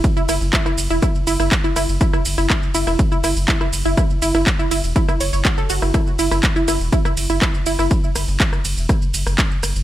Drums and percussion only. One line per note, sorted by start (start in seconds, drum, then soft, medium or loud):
0.04 kick loud
0.04 closed hi-hat medium
0.04 ride medium
0.04 shaker soft
0.17 shaker soft
0.29 cross-stick soft
0.29 closed hi-hat medium
0.29 open hi-hat loud
0.29 ride medium
0.29 shaker medium
0.41 snare soft
0.41 shaker soft
0.53 kick loud
0.53 snare loud
0.53 clap loud
0.53 closed hi-hat medium
0.53 ride medium
0.53 shaker soft
0.66 cross-stick medium
0.66 shaker soft
0.78 closed hi-hat medium
0.78 open hi-hat medium
0.78 ride medium
0.78 shaker medium
0.90 closed hi-hat soft
0.90 shaker soft
1.02 kick loud
1.02 cross-stick medium
1.02 closed hi-hat medium
1.02 ride medium
1.02 shaker soft
1.15 shaker soft
1.27 closed hi-hat medium
1.27 open hi-hat loud
1.27 ride medium
1.27 shaker medium
1.40 cross-stick medium
1.40 shaker soft
1.52 kick loud
1.52 snare loud
1.52 clap loud
1.52 closed hi-hat medium
1.52 ride medium
1.52 shaker soft
1.64 shaker soft
1.76 cross-stick medium
1.76 closed hi-hat medium
1.76 open hi-hat loud
1.76 ride medium
1.76 shaker medium
1.89 shaker soft
2.01 kick loud
2.01 closed hi-hat medium
2.01 ride medium
2.01 shaker soft
2.13 cross-stick medium
2.13 shaker soft
2.25 open hi-hat loud
2.25 open hi-hat medium
2.25 ride medium
2.25 shaker medium
2.38 snare medium
2.38 shaker soft
2.50 kick loud
2.50 cross-stick medium
2.50 snare loud
2.50 clap loud
2.50 closed hi-hat medium
2.50 ride medium
2.50 shaker soft
2.63 shaker soft
2.75 snare medium
2.75 closed hi-hat medium
2.75 open hi-hat loud
2.75 ride medium
2.75 shaker medium
2.87 cross-stick medium
2.87 snare soft
2.87 shaker soft
2.99 kick loud
2.99 closed hi-hat medium
2.99 ride medium
2.99 shaker soft
3.12 shaker soft
3.24 cross-stick medium
3.24 closed hi-hat medium
3.24 open hi-hat loud
3.24 ride medium
3.24 shaker medium
3.36 shaker soft
3.48 kick loud
3.48 snare loud
3.48 clap loud
3.48 closed hi-hat medium
3.48 ride medium
3.48 shaker soft
3.61 cross-stick medium
3.61 shaker soft
3.73 closed hi-hat medium
3.73 open hi-hat loud
3.73 ride medium
3.73 shaker medium
3.86 shaker soft
3.97 kick loud
3.97 cross-stick medium
3.97 closed hi-hat medium
3.97 ride medium
3.97 shaker soft
4.10 shaker soft
4.22 closed hi-hat medium
4.22 open hi-hat loud
4.22 ride medium
4.22 shaker medium
4.35 cross-stick medium
4.35 snare soft
4.35 shaker soft
4.47 kick loud
4.47 snare loud
4.47 clap loud
4.47 closed hi-hat medium
4.47 ride medium
4.47 shaker soft
4.59 shaker soft
4.71 closed hi-hat medium
4.71 open hi-hat loud
4.71 ride medium
4.71 shaker medium
4.84 closed hi-hat soft
4.84 shaker soft
4.96 kick loud
4.96 closed hi-hat medium
4.96 ride medium
4.96 shaker soft
5.09 cross-stick medium
5.09 shaker soft
5.20 closed hi-hat medium
5.20 open hi-hat loud
5.20 ride medium
5.20 shaker medium
5.33 shaker soft
5.45 kick loud
5.45 cross-stick medium
5.45 snare loud
5.45 clap loud
5.45 closed hi-hat medium
5.45 ride medium
5.45 shaker soft
5.58 shaker soft
5.70 closed hi-hat medium
5.70 open hi-hat loud
5.70 ride medium
5.70 shaker medium
5.82 cross-stick medium
5.82 shaker soft
5.94 kick loud
5.94 cross-stick medium
5.94 closed hi-hat medium
5.94 ride medium
5.94 shaker soft
6.07 shaker soft
6.19 open hi-hat medium
6.19 open hi-hat loud
6.19 ride medium
6.19 shaker medium
6.31 cross-stick medium
6.31 snare medium
6.31 shaker soft
6.43 kick loud
6.43 snare loud
6.43 clap loud
6.43 closed hi-hat medium
6.43 ride medium
6.43 shaker soft
6.56 shaker soft
6.68 cross-stick medium
6.68 snare medium
6.68 closed hi-hat medium
6.68 open hi-hat medium
6.68 ride medium
6.68 shaker medium
6.81 shaker soft
6.93 kick loud
6.93 closed hi-hat medium
6.93 ride medium
6.93 shaker soft
7.05 cross-stick medium
7.05 shaker soft
7.17 closed hi-hat medium
7.17 open hi-hat loud
7.17 ride medium
7.17 shaker medium
7.30 shaker soft
7.42 kick loud
7.42 cross-stick medium
7.42 snare loud
7.42 clap loud
7.42 closed hi-hat medium
7.42 ride medium
7.42 shaker soft
7.54 shaker soft
7.66 closed hi-hat medium
7.66 open hi-hat loud
7.66 ride medium
7.66 shaker medium
7.79 cross-stick medium
7.79 shaker soft
7.91 kick loud
7.91 closed hi-hat medium
7.91 ride medium
7.91 shaker soft
8.04 shaker soft
8.15 cross-stick medium
8.15 closed hi-hat medium
8.15 open hi-hat loud
8.15 ride medium
8.15 shaker medium
8.28 snare soft
8.28 shaker soft
8.40 kick loud
8.40 snare loud
8.40 clap loud
8.40 closed hi-hat medium
8.40 ride medium
8.40 shaker soft
8.53 cross-stick medium
8.53 shaker soft
8.65 closed hi-hat medium
8.65 open hi-hat medium
8.65 ride medium
8.65 shaker medium
8.77 closed hi-hat soft
8.77 shaker soft
8.89 kick loud
8.89 cross-stick medium
8.89 closed hi-hat medium
8.89 ride medium
8.89 shaker soft
9.02 shaker soft
9.14 closed hi-hat medium
9.14 open hi-hat loud
9.14 ride medium
9.14 shaker medium
9.27 cross-stick medium
9.27 shaker soft
9.38 kick loud
9.38 snare loud
9.38 clap loud
9.38 closed hi-hat medium
9.38 ride medium
9.38 shaker soft
9.51 shaker soft
9.63 cross-stick medium
9.63 closed hi-hat medium
9.63 open hi-hat medium
9.63 ride medium
9.63 shaker medium
9.76 shaker soft